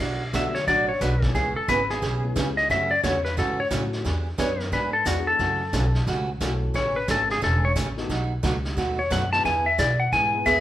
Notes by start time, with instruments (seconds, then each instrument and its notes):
0.00 upright bass B1, steel-string acoustic guitar B2 F#3 A3 D4 F#4, brush sweep
0.33 upright bass D2, steel-string acoustic guitar B2 F#3 A3 D4 F#4, upright piano F#3 A3 B3 D4 F#4, electric slide guitar E5, kick, snare, hi-hat pedal
0.55 electric slide guitar C#5, snare
0.67 upright bass A1, steel-string acoustic guitar B2 F#3 A3 D4 F#4, electric slide guitar D5, brush sweep, kick, snare
0.89 electric slide guitar C#5
1.01 upright bass B1, steel-string acoustic guitar B2 F#3 A3 D4 F#4, electric slide guitar B4, kick, snare, hi-hat pedal
1.22 upright piano G#3 B3 C#4 E4 G#4, electric slide guitar A4, kick, snare
1.34 upright bass C#2, steel-string acoustic guitar C#3 E3 B3 C#4 G#4, electric slide guitar G#4, brush sweep, kick, snare
1.56 electric slide guitar A4, muted upright bass stroke
1.68 upright bass G#1, steel-string acoustic guitar C#3 E3 B3 C#4 G#4, electric slide guitar B4, kick, snare, hi-hat pedal
1.90 electric slide guitar G#4, snare
2.02 upright bass B1, steel-string acoustic guitar C#3 E3 B3 C#4 G#4, brush sweep, kick, snare
2.23 upright piano G#3 B3 C#4 E4 G#4
2.36 upright bass C#2, steel-string acoustic guitar C#3 E3 B3 C#4 G#4, kick, snare, hi-hat pedal
2.57 electric slide guitar D#5, snare
2.70 upright bass F#2, steel-string acoustic guitar C#3 E3 A3 C#4 F#4, electric slide guitar E5, brush sweep, kick, snare
2.91 electric slide guitar D5
3.03 upright bass E2, steel-string acoustic guitar C#3 E3 A3 C#4 F#4, electric slide guitar C#5, kick, snare, hi-hat pedal
3.25 electric slide guitar B4, snare
3.37 upright bass G#2, steel-string acoustic guitar C#3 E3 A3 C#4 F#4, electric slide guitar A4, brush sweep, kick, snare
3.60 electric slide guitar C#5
3.71 upright bass A2, steel-string acoustic guitar C#3 E3 A3 C#4 F#4, upright piano F#3 A3 C#4 E4 F#4, kick, snare, hi-hat pedal
3.93 snare
4.05 upright bass E2, steel-string acoustic guitar E3 B3 D4 G#4, brush sweep, kick, snare
4.38 upright bass F#2, steel-string acoustic guitar E3 B3 D4 G#4, electric slide guitar C#5, kick, snare, hi-hat pedal
4.60 electric slide guitar A#4, snare
4.72 upright bass G#2, steel-string acoustic guitar E3 B3 D4 G#4, electric slide guitar B4, brush sweep, kick, snare
4.93 electric slide guitar A4
5.05 upright bass E2, steel-string acoustic guitar E3 B3 D4 G#4, upright piano G#3 B3 D4 E4 G#4, electric slide guitar F#4, kick, snare, hi-hat pedal
5.27 electric slide guitar A4
5.39 upright bass F#2, steel-string acoustic guitar C#3 E3 A3 C#4 F#4, brush sweep, kick, snare
5.73 upright bass B1, steel-string acoustic guitar C#3 E3 A3 C#4 F#4, kick, snare, hi-hat pedal
5.95 snare
6.07 upright bass C#2, steel-string acoustic guitar C#3 E3 A3 C#4 F#4, brush sweep, kick, snare
6.41 upright bass B1, steel-string acoustic guitar C#3 E3 A3 C#4 F#4, upright piano A3 C#4 E4 F#4 A4, kick, snare, hi-hat pedal
6.74 upright bass A1, steel-string acoustic guitar C#3 E3 A3 C#4 G#4, electric slide guitar C#5, brush sweep, kick, snare
6.96 electric slide guitar B4
7.08 upright bass G#1, steel-string acoustic guitar C#3 E3 A3 C#4 G#4, electric slide guitar A4, kick, snare, hi-hat pedal
7.30 electric slide guitar G#4, snare
7.41 upright bass E1, steel-string acoustic guitar C#3 E3 A3 C#4 G#4, electric slide guitar A4, brush sweep, kick, snare
7.65 electric slide guitar C#5
7.76 upright bass A1, steel-string acoustic guitar C#3 E3 A3 C#4 G#4, kick, snare, hi-hat pedal
7.97 upright piano A3 B3 D#4 F#4 A4, snare
8.09 upright bass B1, steel-string acoustic guitar B2 F#3 A3 D#4 F#4, brush sweep, kick, snare
8.43 upright bass C#2, steel-string acoustic guitar B2 F#3 A3 D#4 F#4, kick, snare, hi-hat pedal
8.65 snare
8.77 upright bass D#2, steel-string acoustic guitar B2 F#3 A3 D#4 F#4, brush sweep, kick, snare
8.99 electric slide guitar C#5
9.10 upright bass F#2, steel-string acoustic guitar B2 F#3 A3 D#4 F#4, electric slide guitar F#5, kick, snare, hi-hat pedal
9.32 upright piano G#3 B3 E4 G#4 B4, electric slide guitar A5, snare
9.45 upright bass E2, steel-string acoustic guitar E3 B3 E4 G#4, electric slide guitar G#5, brush sweep, kick, snare
9.66 electric slide guitar E5
9.78 upright bass B2, steel-string acoustic guitar E3 B3 E4 G#4, electric slide guitar D5, kick, snare, hi-hat pedal
10.00 electric slide guitar F#5
10.12 upright bass G#2, steel-string acoustic guitar E3 B3 E4 G#4, electric slide guitar G#5, brush sweep, kick, snare
10.34 upright piano G#3 B3 E4 G#4 B4
10.46 upright bass E2, steel-string acoustic guitar E3 B3 E4 G#4, fiddle G#4, electric slide guitar E5, kick, snare, hi-hat pedal